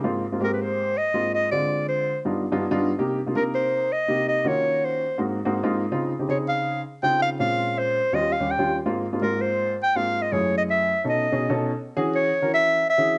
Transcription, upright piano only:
\new Staff \with { instrumentName = "Upright piano" } { \time 4/4 \key aes \major \tempo 4 = 164 <aes, bes c' f'>8 r16 <aes, bes c' f'>16 <aes, bes c' g'>4. r8 <aes, bes c' f'>4 | <d aes c' f'>4. r8 <g, b d' ees' f'>8 r16 <g, b d' ees' f'>16 r16 <g, b d' ees' f'>8 r16 | <c bes ees' g'>8 r16 <c bes ees' f'>16 <c bes ees' bes'>4. r8 <c bes ees' g'>4 | <ees bes des' f' ges'>4. r8 <aes, bes c' ees' ges'>8 r16 <aes, bes c' ees' ges'>16 r16 <aes, bes c' ees' f'>8 r16 |
<des c' ees' f'>8 r16 <des c' ees' g'>16 <des c' ees' aes'>4. r8 <des c' ees' f'>4 | <bes, aes c' des' f'>4. r8 <ees, g des' f'>8 r16 <ees, g des' g'>16 r16 <ees, g des' f'>8 r16 | <aes, bes c' f'>8 r16 <aes, bes c' f'>16 <aes, bes c' f'>4. r8 <aes, bes c' f'>4 | <ges, a fes' aes'>4. r8 <b, des' dis' a'>8 r16 <b, des' dis' aes'>16 r16 <b, des' dis' a'>8 r16 |
r8 <e cis' ges' gis'>4 r16 <e cis' ges' bes'>4 r8 <e cis' ges' gis'>8. | }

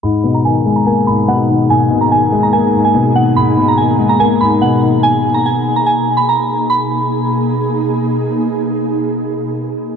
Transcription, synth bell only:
\new Staff \with { instrumentName = "Synth bell" } { \time 4/4 \key gis \minor \tempo 4 = 144 b''8. ais''16 gis''8. ais''16 gis''8 b''8 fis''8 r8 | gis''8. ais''16 gis''8. ais''16 gis''8. gis''8. fis''8 | b''8. ais''16 gis''8. ais''16 gis''8 b''8 fis''8 r8 | gis''8. ais''16 gis''8. ais''16 gis''8. b''16 ais''4 |
b''2. r4 | r1 | }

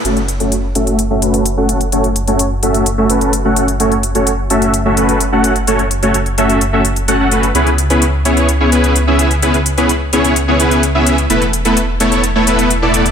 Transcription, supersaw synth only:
\new Staff \with { instrumentName = "Supersaw synth" } { \time 4/4 \key fis \minor \tempo 4 = 128 <a cis' fis' a' cis''>16 r8 <a cis' fis' a' cis''>16 r8 <a cis' fis' a' e''>8 r16 <a cis' fis' a' e''>16 <a cis' fis' a' b'>8 r16 <a cis' fis' a' fis''>8 r16 | <a cis' fis' a' cis''>16 r8 <a cis' fis' a' cis''>16 r8 <a cis' fis' a' e''>8 r16 <a cis' fis' a' e''>16 <a cis' fis' a' b'>8 r16 <a cis' fis' a' fis''>8 r16 | <a cis' fis' a' cis''>16 r8 <a cis' fis' a' cis''>16 r8 <a cis' fis' a' e''>8 r16 <a cis' fis' a' e''>16 <a cis' fis' a' b'>8 r16 <a cis' fis' a' fis''>8 r16 | <a cis' fis' a' cis''>16 r8 <a cis' fis' a' cis''>16 r8 <a cis' fis' a' e''>8 r16 <a cis' fis' a' e''>16 r8 <a cis' fis' a' fis''>16 <a cis' fis' a' fis''>16 <a cis' fis' a' b'>16 r16 |
<b cis' e' gis' b'>16 r8 <b cis' e' gis' b'>16 r8 <b cis' e' gis' cis''>8 r16 <b cis' e' gis' cis''>16 <b cis' e' gis' b'>8 r16 <b cis' e' gis' e''>8 r16 | <b cis' e' gis' b'>16 r8 <b cis' e' gis' b'>16 r8 <b cis' e' gis' cis''>8 r16 <b cis' e' gis' cis''>16 <b cis' e' gis' b'>8 r16 <b cis' e' gis' e''>8 r16 | <a b e' a' b'>16 r8 <a b e' a' b'>16 r8 <a b e' a' cis''>8 r16 <a b e' a' cis''>16 <a b e' a' b'>8 r16 <a b e' a' d''>8 r16 | }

